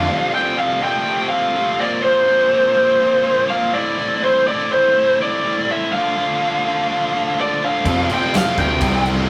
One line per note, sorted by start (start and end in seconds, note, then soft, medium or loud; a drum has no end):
0.00 0.31 F5 loud
0.08 0.31 F2 loud
0.08 0.32 C3 loud
0.08 0.33 F3 loud
0.08 0.32 A3 loud
0.08 0.33 C4 loud
0.32 0.55 F2 medium
0.32 0.56 C3 medium
0.32 0.58 F3 medium
0.32 0.57 A3 medium
0.32 0.59 C4 medium
0.32 0.59 G5 loud
0.57 0.79 F2 loud
0.57 0.80 C3 loud
0.57 0.81 F3 loud
0.57 0.81 A3 loud
0.57 0.83 C4 loud
0.57 0.83 F5 loud
0.81 1.03 F2 medium
0.81 1.04 C3 loud
0.81 1.04 F3 loud
0.81 1.04 A3 medium
0.81 1.06 C4 loud
0.81 1.29 G5 loud
1.05 1.27 F2 loud
1.05 1.28 C3 loud
1.05 1.29 F3 loud
1.05 1.30 A3 loud
1.05 1.30 C4 loud
1.28 1.53 F2 medium
1.28 1.53 C3 medium
1.28 1.54 F3 medium
1.28 1.55 A3 loud
1.28 1.55 C4 loud
1.28 1.80 F5 loud
1.54 1.77 F2 loud
1.54 1.78 C3 loud
1.54 1.78 F3 loud
1.54 1.78 A3 loud
1.54 1.80 C4 loud
1.79 2.01 A#2 medium
1.79 2.02 F3 loud
1.79 2.02 A#3 loud
1.79 2.03 C4 loud
1.79 2.03 D5 loud
2.02 2.26 A#2 loud
2.02 2.27 F3 loud
2.02 2.27 A#3 loud
2.02 2.28 C4 loud
2.02 3.54 C5 loud
2.27 2.51 A#2 medium
2.27 2.51 F3 medium
2.27 2.52 A#3 medium
2.27 2.53 C4 medium
2.52 2.74 A#2 loud
2.52 2.74 F3 loud
2.52 2.75 A#3 loud
2.52 2.77 C4 loud
2.75 2.99 A#2 medium
2.75 2.99 F3 loud
2.75 2.99 A#3 loud
2.75 3.01 C4 loud
3.00 3.22 A#2 loud
3.00 3.23 F3 loud
3.00 3.23 A#3 loud
3.00 3.25 C4 loud
3.23 3.47 A#2 medium
3.23 3.47 F3 loud
3.23 3.48 A#3 medium
3.23 3.49 C4 loud
3.48 3.72 A#2 medium
3.48 3.72 F3 loud
3.48 3.72 A#3 loud
3.48 3.74 C4 loud
3.48 3.72 F5 loud
3.73 3.96 A2 medium
3.73 3.97 E3 loud
3.73 3.98 A3 medium
3.73 3.99 C4 loud
3.73 3.98 E4 loud
3.73 4.23 D5 loud
3.98 4.20 A2 loud
3.98 4.21 E3 loud
3.98 4.22 A3 loud
3.98 4.22 C4 loud
3.98 4.21 E4 loud
4.22 4.44 A2 medium
4.22 4.45 E3 loud
4.22 4.46 A3 medium
4.22 4.46 C4 loud
4.22 4.46 E4 medium
4.22 4.47 C5 loud
4.45 4.69 A2 loud
4.45 4.70 E3 loud
4.45 4.72 A3 loud
4.45 4.72 C4 loud
4.45 4.71 E4 loud
4.45 4.72 D5 medium
4.70 4.93 A2 medium
4.70 4.94 E3 loud
4.70 4.96 A3 loud
4.70 4.96 C4 loud
4.70 4.96 E4 medium
4.70 5.17 C5 loud
4.94 5.18 A2 loud
4.94 5.19 E3 loud
4.94 5.20 A3 loud
4.94 5.20 C4 loud
4.94 5.20 E4 loud
5.19 5.43 A2 loud
5.19 5.44 E3 medium
5.19 5.45 A3 medium
5.19 5.46 C4 loud
5.19 5.45 E4 loud
5.19 5.71 D5 loud
5.44 5.67 A2 medium
5.44 5.67 E3 loud
5.44 5.69 A3 loud
5.44 5.69 C4 loud
5.44 5.69 E4 loud
5.68 5.91 A2 medium
5.68 5.91 E3 medium
5.68 5.93 A3 medium
5.68 5.93 C4 medium
5.68 5.92 E4 medium
5.68 5.92 E5 loud
5.93 6.16 D3 loud
5.93 6.17 F3 loud
5.93 6.17 A3 loud
5.93 6.17 D4 loud
5.93 7.42 F5 loud
6.17 6.39 D3 medium
6.17 6.41 F3 medium
6.17 6.41 A3 medium
6.17 6.41 D4 medium
6.40 6.64 D3 medium
6.40 6.66 F3 loud
6.40 6.65 A3 loud
6.40 6.66 D4 loud
6.66 6.88 D3 medium
6.66 6.89 F3 medium
6.66 6.89 A3 loud
6.66 6.90 D4 medium
6.89 7.12 D3 medium
6.89 7.14 F3 loud
6.89 7.13 A3 loud
6.89 7.14 D4 loud
7.13 7.36 D3 medium
7.13 7.38 F3 medium
7.13 7.37 A3 loud
7.13 7.37 D4 medium
7.37 7.61 D3 medium
7.37 7.63 F3 medium
7.37 7.62 A3 loud
7.37 7.63 D4 loud
7.37 7.64 D5 medium
7.62 7.85 D3 medium
7.62 7.85 F3 medium
7.62 7.85 A3 medium
7.62 7.85 D4 medium
7.62 8.08 F5 loud
7.85 8.08 F2 loud
7.85 8.06 F2 medium
7.85 8.09 C3 loud
7.85 8.10 F3 loud
7.85 8.10 A3 loud
7.85 8.11 C4 loud
7.85 kick loud
7.85 crash medium
8.09 8.32 F2 medium
8.09 8.33 C3 medium
8.09 8.34 F3 medium
8.09 8.34 A3 medium
8.09 8.35 C4 medium
8.09 crash medium
8.14 8.37 G5 loud
8.33 8.58 F2 loud
8.33 8.58 C3 loud
8.33 8.58 F3 loud
8.33 8.59 A3 loud
8.33 8.59 C4 loud
8.33 8.58 F5 medium
8.33 snare loud
8.33 crash loud
8.58 8.78 D2 medium
8.58 8.82 F2 loud
8.58 8.82 C3 medium
8.58 8.83 F3 medium
8.58 8.83 A3 medium
8.58 8.84 C4 loud
8.58 9.04 G5 medium
8.58 kick medium
8.58 crash medium
8.81 9.29 C2 loud
8.81 9.07 F2 loud
8.81 9.06 C3 loud
8.81 9.07 F3 loud
8.81 9.08 A3 loud
8.81 9.09 C4 loud
8.81 kick loud
8.81 crash loud
9.06 9.29 F2 medium
9.06 9.28 C3 medium
9.06 9.29 F3 medium
9.06 9.29 A3 medium
9.06 9.29 C4 loud
9.06 crash medium